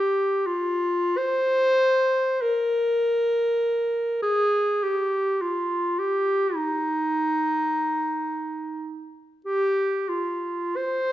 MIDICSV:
0, 0, Header, 1, 2, 480
1, 0, Start_track
1, 0, Tempo, 1418440
1, 394, Tempo, 1250000
1, 874, Tempo, 1200000
1, 1833, Time_signature, 4, 2, 24, 8
1, 1834, Tempo, 1147228
1, 3274, Tempo, 1185771
1, 3754, Tempo, 1298701
1, 4376, End_track
2, 0, Start_track
2, 0, Title_t, "Clarinet"
2, 0, Program_c, 0, 71
2, 0, Note_on_c, 0, 67, 97
2, 158, Note_on_c, 0, 65, 96
2, 163, Note_off_c, 0, 67, 0
2, 398, Note_on_c, 0, 72, 122
2, 404, Note_off_c, 0, 65, 0
2, 875, Note_on_c, 0, 70, 101
2, 881, Note_off_c, 0, 72, 0
2, 1593, Note_off_c, 0, 70, 0
2, 1598, Note_on_c, 0, 68, 107
2, 1842, Note_on_c, 0, 67, 98
2, 1848, Note_off_c, 0, 68, 0
2, 2085, Note_on_c, 0, 65, 81
2, 2092, Note_off_c, 0, 67, 0
2, 2327, Note_on_c, 0, 67, 96
2, 2333, Note_off_c, 0, 65, 0
2, 2561, Note_on_c, 0, 63, 102
2, 2567, Note_off_c, 0, 67, 0
2, 3641, Note_off_c, 0, 63, 0
2, 3757, Note_on_c, 0, 67, 107
2, 3994, Note_on_c, 0, 65, 83
2, 3999, Note_off_c, 0, 67, 0
2, 4243, Note_on_c, 0, 72, 116
2, 4249, Note_off_c, 0, 65, 0
2, 4376, Note_off_c, 0, 72, 0
2, 4376, End_track
0, 0, End_of_file